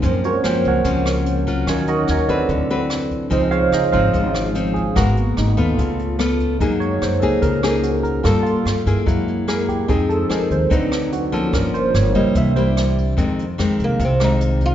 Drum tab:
HH |xxxxxxxx|xxxxxxxx|xxxxxxxx|xxxxxxxx|
SD |--r--r--|r-r---r-|--r--r--|r-r---r-|
BD |o--oo--o|o--oo--o|o--oo--o|o--oo--o|

HH |xxxxxxxx|xxxxxxxx|xxxxxxxx|xxxxxxxx|
SD |--r--r--|r-r---r-|--r--r--|r-r---r-|
BD |o--oo--o|o--oo--o|o--oo--o|o--oo--o|

HH |xxxxxxxx|
SD |--r--r--|
BD |o--oo--o|